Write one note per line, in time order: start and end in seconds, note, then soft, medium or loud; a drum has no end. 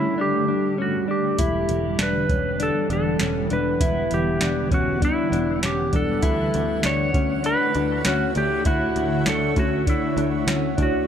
0.00 6.20 D3 medium
0.00 6.20 G3 medium
0.00 1.35 A3 medium
0.00 0.17 C#4 medium
0.00 0.19 E4 medium
0.18 0.47 D4 medium
0.18 0.81 G4 medium
0.48 0.78 D4 medium
0.78 1.08 C#4 medium
0.78 1.10 F#4 medium
1.08 1.38 D4 medium
1.08 2.03 G4 medium
1.38 1.65 E1 medium
1.38 6.20 E3 medium
1.38 6.20 B3 medium
1.38 1.99 E4 medium
1.38 11.04 F#5 medium
1.38 kick medium
1.38 closed hi-hat medium
1.69 1.96 E1 medium
1.69 closed hi-hat soft
1.99 2.26 E1 medium
1.99 2.29 D4 medium
1.99 2.63 B4 medium
1.99 snare loud
1.99 closed hi-hat medium
2.29 2.69 E1 medium
2.29 2.59 C#4 medium
2.29 kick medium
2.29 closed hi-hat soft
2.60 2.89 D4 medium
2.60 2.92 A4 medium
2.60 closed hi-hat medium
2.90 3.17 E1 medium
2.90 3.21 D4 medium
2.90 3.53 A4 medium
2.90 closed hi-hat soft
3.19 3.47 E1 medium
3.19 3.51 C#4 medium
3.19 snare loud
3.19 closed hi-hat medium
3.50 3.78 E1 medium
3.50 3.81 D4 medium
3.50 4.14 B4 medium
3.50 closed hi-hat soft
3.80 4.07 E1 loud
3.80 4.42 E4 medium
3.80 kick medium
3.80 closed hi-hat medium
4.11 4.39 E1 medium
4.11 4.74 G4 medium
4.11 closed hi-hat soft
4.41 4.69 E1 medium
4.41 4.72 D4 medium
4.41 snare loud
4.41 closed hi-hat medium
4.71 5.11 E1 medium
4.71 5.01 C#4 medium
4.71 5.04 F#4 medium
4.71 kick medium
4.71 closed hi-hat soft
5.02 5.31 D4 medium
5.02 5.66 E4 medium
5.02 kick medium
5.02 closed hi-hat medium
5.32 5.59 E1 medium
5.32 5.62 D4 medium
5.32 closed hi-hat soft
5.62 5.89 E1 loud
5.62 5.92 C#4 medium
5.62 5.95 G4 medium
5.62 snare loud
5.62 closed hi-hat medium
5.93 6.20 E1 loud
5.93 6.23 D4 medium
5.93 6.88 A4 medium
5.93 kick medium
5.93 closed hi-hat soft
6.23 6.50 D2 loud
6.23 11.04 D3 medium
6.23 11.04 A3 medium
6.23 6.84 E4 medium
6.23 11.04 E4 medium
6.23 11.04 C#5 medium
6.23 kick medium
6.23 closed hi-hat medium
6.54 6.81 D2 medium
6.54 closed hi-hat soft
6.83 7.11 D2 medium
6.83 7.14 D4 medium
6.83 7.46 C#5 medium
6.83 snare loud
6.83 closed hi-hat medium
7.14 7.54 D2 medium
7.14 7.44 C#4 medium
7.14 kick medium
7.14 closed hi-hat soft
7.44 7.74 D4 medium
7.44 8.08 B4 loud
7.44 closed hi-hat medium
7.75 8.02 D2 medium
7.75 8.05 D4 medium
7.75 closed hi-hat soft
8.05 8.32 D2 medium
8.05 8.35 C#4 medium
8.05 8.37 F#4 medium
8.05 snare loud
8.05 closed hi-hat medium
8.35 8.62 D2 medium
8.35 8.66 D4 medium
8.35 8.67 G4 medium
8.35 closed hi-hat soft
8.65 8.93 D2 medium
8.65 9.27 E4 medium
8.65 9.29 F#4 medium
8.65 kick loud
8.65 closed hi-hat medium
8.96 9.23 D2 medium
8.96 closed hi-hat soft
9.26 9.53 D2 medium
9.26 9.57 D4 medium
9.26 9.59 A4 medium
9.26 snare loud
9.26 closed hi-hat medium
9.56 9.97 D2 medium
9.56 9.87 C#4 medium
9.56 9.89 F#4 medium
9.56 kick medium
9.56 closed hi-hat soft
9.87 10.16 D4 medium
9.87 10.75 E4 medium
9.87 kick medium
9.87 closed hi-hat medium
10.17 10.44 D2 medium
10.17 10.47 D4 medium
10.17 closed hi-hat soft
10.47 10.74 D2 medium
10.47 10.77 C#4 medium
10.47 snare loud
10.47 closed hi-hat medium
10.77 11.05 D2 medium
10.77 11.07 D4 medium
10.77 kick medium
10.77 closed hi-hat soft
10.83 11.07 F#4 medium